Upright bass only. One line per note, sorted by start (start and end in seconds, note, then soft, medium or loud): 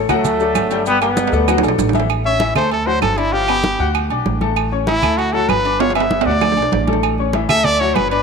0.08 0.52 D2 medium
0.55 1.27 G1 medium
1.32 1.61 D2 loud
1.63 1.77 B1 medium
1.79 2.50 A1 medium
2.55 2.99 D2 medium
3.01 3.74 G1 medium
3.79 4.08 D2 medium
4.10 4.24 B1 medium
4.25 4.97 A1 medium
5.02 5.45 D2 medium
5.49 6.21 G1 medium
6.25 6.55 D2 loud
6.57 6.71 B1 medium
6.72 7.44 A1 medium
7.49 7.92 D2 medium
7.96 8.23 G1 loud